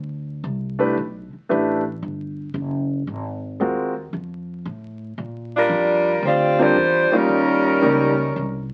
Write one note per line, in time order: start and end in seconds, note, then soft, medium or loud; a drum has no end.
0.00 0.42 D2 medium
0.44 0.95 C2 medium
0.79 0.94 A3 medium
0.79 0.94 D4 medium
0.79 0.95 E4 medium
0.79 0.95 G4 medium
0.79 0.95 B4 medium
0.97 1.30 B1 medium
1.33 muted upright bass stroke soft
1.49 2.01 A1 medium
1.49 1.81 A3 medium
1.49 1.81 D4 medium
1.49 1.81 E4 medium
1.49 1.81 G4 medium
1.49 1.81 B4 medium
2.02 2.53 G1 medium
2.54 3.05 F#1 medium
3.07 3.58 G#1 medium
3.60 4.11 D#2 medium
3.60 3.92 G#3 medium
3.60 3.92 C4 medium
3.60 3.92 F4 medium
3.60 3.92 F#4 medium
3.60 3.93 A#4 medium
4.13 4.64 F2 medium
4.65 5.17 A2 medium
5.18 5.69 A#2 medium
5.56 6.21 G3 medium
5.56 6.21 D4 medium
5.56 6.21 F4 medium
5.56 6.21 A#4 loud
5.69 6.21 F2 loud
6.22 6.74 D2 medium
6.22 6.60 C4 loud
6.22 6.60 F4 loud
6.22 6.60 G4 loud
6.22 6.60 D5 loud
6.58 6.74 G3 medium
6.58 7.13 G3 medium
6.58 6.75 C4 medium
6.58 6.75 D4 medium
6.58 7.13 D4 medium
6.58 6.75 F4 medium
6.58 7.13 F4 medium
6.58 6.75 A#4 medium
6.58 7.13 C5 loud
6.76 7.09 E2 loud
7.12 7.78 G3 medium
7.12 8.72 G3 medium
7.12 7.79 A#3 medium
7.12 7.78 C#4 medium
7.12 8.71 C#4 medium
7.12 7.79 D#4 medium
7.12 8.71 D#4 medium
7.12 7.79 F4 medium
7.12 8.71 A#4 loud
7.12 muted upright bass stroke soft
7.29 7.80 D#2 medium
7.81 8.33 C#2 loud
7.81 8.13 G3 medium
7.81 8.14 A#3 medium
7.81 8.14 C#4 medium
7.81 8.14 D#4 medium
7.81 8.14 A#4 medium
8.36 8.73 C2 loud